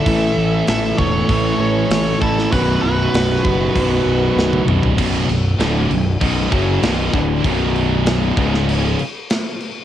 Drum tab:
CC |----------------|----------------|x-x-x-x-x-x-x-x-|x-x-x-x-x-x-x-x-|
HH |o---o---o---o---|o---o---o-------|----------------|----------------|
SD |----o-------o--o|----o-------o---|----o-------o---|----o--o----o---|
T1 |----------------|-------------o--|----------------|----------------|
T2 |----------------|--------------o-|----------------|----------------|
FT |----------------|---------------o|----------------|----------------|
BD |o-----o-o-----o-|o-----o-o-------|o-------o-o---o-|o-----o---------|